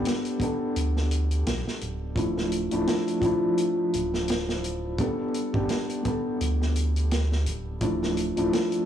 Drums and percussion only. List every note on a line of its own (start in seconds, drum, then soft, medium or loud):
0.05 snare loud
0.05 closed hi-hat medium
0.25 closed hi-hat soft
0.40 kick medium
0.40 closed hi-hat medium
0.76 closed hi-hat medium
0.97 snare soft
1.11 closed hi-hat medium
1.31 closed hi-hat soft
1.47 snare loud
1.47 closed hi-hat medium
1.68 snare soft
1.81 closed hi-hat medium
2.16 kick medium
2.16 closed hi-hat medium
2.37 snare soft
2.52 closed hi-hat medium
2.71 closed hi-hat soft
2.87 snare loud
2.87 closed hi-hat medium
3.08 closed hi-hat soft
3.22 kick medium
3.22 closed hi-hat medium
3.58 closed hi-hat medium
3.93 closed hi-hat medium
4.14 snare soft
4.28 snare loud
4.28 closed hi-hat medium
4.49 snare medium
4.64 closed hi-hat medium
4.98 kick loud
4.98 closed hi-hat medium
5.34 closed hi-hat medium
5.54 kick medium
5.69 snare loud
5.69 closed hi-hat medium
5.90 closed hi-hat soft
6.05 kick loud
6.05 closed hi-hat medium
6.41 closed hi-hat medium
6.62 snare soft
6.76 closed hi-hat medium
6.96 closed hi-hat soft
7.11 snare loud
7.11 closed hi-hat medium
7.32 snare soft
7.46 closed hi-hat medium
7.81 kick loud
7.81 closed hi-hat medium
8.03 snare soft
8.17 closed hi-hat medium
8.37 closed hi-hat soft
8.53 snare loud
8.53 closed hi-hat medium
8.72 closed hi-hat soft